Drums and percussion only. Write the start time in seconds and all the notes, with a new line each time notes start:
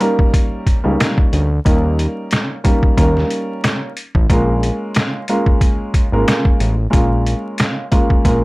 0.01 closed hi-hat
0.19 kick
0.34 kick, closed hi-hat
0.66 kick, closed hi-hat
1.00 snare, closed hi-hat
1.18 kick
1.33 closed hi-hat
1.66 kick, closed hi-hat
1.99 closed hi-hat
2.31 snare, closed hi-hat
2.65 kick, closed hi-hat
2.83 kick
2.97 kick, closed hi-hat
3.17 snare
3.31 closed hi-hat
3.64 snare, closed hi-hat
3.97 closed hi-hat
4.15 kick
4.30 kick, closed hi-hat
4.63 closed hi-hat
4.95 snare, closed hi-hat
5.28 closed hi-hat
5.46 kick
5.61 kick, closed hi-hat
5.94 kick, closed hi-hat
6.28 snare, closed hi-hat
6.45 kick
6.60 closed hi-hat
6.93 kick, closed hi-hat
7.27 closed hi-hat
7.58 snare, closed hi-hat
7.92 kick, closed hi-hat
8.10 kick
8.25 kick, closed hi-hat